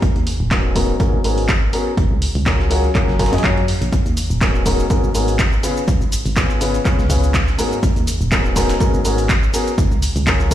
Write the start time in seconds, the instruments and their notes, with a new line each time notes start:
0.02 fm bass G#1, kick, closed hi-hat
0.16 fm bass D#2, closed hi-hat
0.27 closed hi-hat, open hi-hat
0.40 fm bass D#1
0.51 grand piano G#2 B3 C#4 F#4 G#4 A#4, kick, snare, clap, closed hi-hat
0.75 grand piano G#2 B3 C#4 F#4 G#4 A#4, kick, closed hi-hat, open hi-hat
1.00 grand piano G#2 B3 C#4 F#4 G#4 A#4, kick, closed hi-hat
1.13 fm bass G#1
1.24 grand piano G#2 B3 C#4 F#4 G#4 A#4, closed hi-hat, open hi-hat
1.38 open hi-hat
1.49 kick, snare, clap, closed hi-hat
1.73 grand piano B3 C#4 F#4 G#4 A#4, closed hi-hat, open hi-hat
1.97 fm bass F#1, kick, closed hi-hat
2.11 fm bass C#2
2.22 closed hi-hat, open hi-hat
2.35 fm bass C#2, open hi-hat
2.46 grand piano F#3 C#4 F4 F#4 G#4 A#4, kick, snare, clap, closed hi-hat
2.60 snare
2.71 grand piano F#3 C#4 F4 F#4 G#4 A#4, closed hi-hat, open hi-hat
2.84 closed hi-hat
2.95 grand piano F#3 C#4 F4 F#4 G#4 A#4, kick, clap, closed hi-hat
3.08 fm bass F#1, snare
3.19 grand piano F#3 C#4 F4 F#4 G#4 A#4, kick, snare, closed hi-hat, open hi-hat
3.26 snare, closed hi-hat
3.33 fm bass F#2, grand piano F#3 C#4 F4 F#4 G#4 D#5, snare, closed hi-hat
3.38 snare, closed hi-hat
3.44 grand piano F#3 C#4 F4 F#4 G#4 C#5, kick, clap, closed hi-hat
3.57 closed hi-hat
3.68 closed hi-hat, open hi-hat
3.81 fm bass A#1, closed hi-hat
3.92 fm bass G#1, kick, closed hi-hat, cabasa
4.06 fm bass D#2, closed hi-hat, cabasa
4.17 closed hi-hat, open hi-hat, cabasa
4.30 fm bass D#1, cabasa
4.41 grand piano G#2 B3 C#4 F#4 G#4 A#4, kick, snare, clap, closed hi-hat, cabasa
4.55 cabasa
4.66 grand piano G#2 B3 C#4 F#4 G#4 A#4, kick, closed hi-hat, open hi-hat, cabasa
4.79 cabasa
4.90 grand piano G#2 B3 C#4 F#4 G#4 A#4, kick, closed hi-hat, cabasa
5.04 fm bass G#1, cabasa
5.15 grand piano G#2 B3 C#4 F#4 G#4 A#4, closed hi-hat, open hi-hat, cabasa
5.28 open hi-hat, cabasa
5.39 kick, snare, clap, closed hi-hat, cabasa
5.53 cabasa
5.63 grand piano C#3 B3 C#4 F4 G#4 B4, closed hi-hat, open hi-hat, cabasa
5.77 cabasa
5.88 fm bass C#2, kick, closed hi-hat, cabasa
6.01 fm bass G#1, cabasa
6.12 closed hi-hat, open hi-hat, cabasa
6.26 fm bass G#1, open hi-hat, cabasa
6.36 grand piano C#3 B3 C#4 F4 G#4 B4, kick, snare, clap, closed hi-hat, cabasa
6.50 snare, cabasa
6.61 grand piano C#3 B3 C#4 F4 G#4 B4, closed hi-hat, open hi-hat, cabasa
6.74 closed hi-hat, cabasa
6.85 grand piano C#3 B3 C#4 F4 G#4 B4, kick, clap, closed hi-hat, cabasa
6.99 fm bass C#2, snare, cabasa
7.10 grand piano C#3 B3 C#4 F4 G#4 B4, kick, closed hi-hat, open hi-hat, cabasa
7.23 cabasa
7.34 kick, snare, clap, closed hi-hat, cabasa
7.47 snare, cabasa
7.58 grand piano G#2 B3 C#4 F#4 G#4 A#4, closed hi-hat, open hi-hat, cabasa
7.72 cabasa
7.83 fm bass G#1, kick, closed hi-hat, cabasa
7.96 fm bass D#2, closed hi-hat, cabasa
8.07 closed hi-hat, open hi-hat, cabasa
8.21 fm bass D#1, cabasa
8.32 grand piano G#2 B3 C#4 F#4 G#4 A#4, kick, snare, clap, closed hi-hat, cabasa
8.45 cabasa
8.56 grand piano G#2 B3 C#4 F#4 G#4 A#4, kick, snare, closed hi-hat, open hi-hat, cabasa
8.69 snare, closed hi-hat, cabasa
8.80 grand piano G#2 B3 C#4 F#4 G#4 A#4, kick, closed hi-hat, cabasa
8.94 fm bass G#1, cabasa
9.05 grand piano G#2 B3 C#4 F#4 G#4 A#4, closed hi-hat, open hi-hat, cabasa
9.18 open hi-hat, cabasa
9.29 kick, snare, clap, closed hi-hat, cabasa
9.43 cabasa
9.54 grand piano B3 C#4 F#4 G#4 A#4, closed hi-hat, open hi-hat, cabasa
9.67 cabasa
9.78 fm bass F#1, kick, closed hi-hat, cabasa
9.91 fm bass C#2, cabasa
10.02 closed hi-hat, open hi-hat, cabasa
10.16 fm bass C#2, open hi-hat, cabasa
10.27 grand piano F#3 C#4 F4 F#4 G#4 A#4, kick, snare, clap, closed hi-hat, cabasa
10.40 snare, cabasa
10.51 kick, closed hi-hat